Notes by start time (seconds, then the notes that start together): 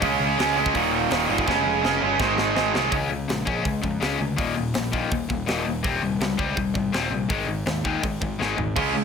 0.01 C#2 C#3 G#3 C#4, kick, open hi-hat
0.20 C#2
0.37 C#2 C#3 G#3 C#4, snare, open hi-hat
0.56 C#3 G#3 C#4
0.66 kick
0.73 D#1 D#2 A#2 D#3, kick, open hi-hat
1.10 D#1 D#2 A#2 D#3, snare, open hi-hat
1.28 G1 D#2 A#2 D#3
1.38 kick
1.46 F1 C#3 G#3 C#4, kick, snare
1.66 F1
1.82 F1 C#3 G#3 C#4, snare
2.01 G1 C#3 G#3 C#4
2.19 G#1 G#2 D#3 G#3, kick, snare
2.38 G#1, snare
2.55 G#1 G#2 D#3 G#3, snare
2.73 C2 G#2 D#3 G#3, snare
2.90 C#2 C#3 G#3 C#4, kick, open hi-hat
3.10 C#2 C#3 G#3
3.28 A#1 C#3 G#3, snare, open hi-hat
3.45 A#1 C#3 G#3 C#4, kick
3.64 C#2 C#3 G#3, kick, open hi-hat
3.82 F2 C#3 G#3, kick
4.00 C#2 C#3 G#3 C#4, snare, open hi-hat
4.19 D2 C#3 G#3
4.37 D#1 D#2 A#2 D#3, kick, open hi-hat
4.56 D#1 D#2 A#2
4.74 A#1 D#2 A#2, snare, open hi-hat
4.92 D#2 A#2 D#3, kick
5.11 D#1 D#2 A#2, kick, open hi-hat
5.29 D#1 D#2 A#2, kick
5.46 D#1 D#2 A#2 D#3, snare, open hi-hat
5.65 D#1 D#2 A#2
5.83 D#1 C3 G3 C4, kick, open hi-hat
6.02 D#1 C3 G3
6.20 C#2 C3 G3, snare, open hi-hat
6.38 C#2 C3 G3 C4, kick
6.56 D#1 C3 G3, kick, open hi-hat
6.74 G#1 C3 G3, kick
6.92 D#1 C3 G3 C4, snare, open hi-hat
7.10 A#1 C3 G3
7.29 G#1 G#2 D#3 G#3, kick, open hi-hat
7.47 G#1 G#2 D#3
7.66 D#2 G#2 D#3, snare, open hi-hat
7.84 G#2 D#3 G#3, kick
8.03 G#1 G#2 D#3, kick, open hi-hat
8.21 G#1 G#2 D#3, kick
8.39 G#1 G#2 D#3 G#3, snare
8.57 G#1 G#2 D#3, floor tom
8.76 C#2 C#3 G#3 C#4, kick, crash
8.93 C#2 C#3 G#3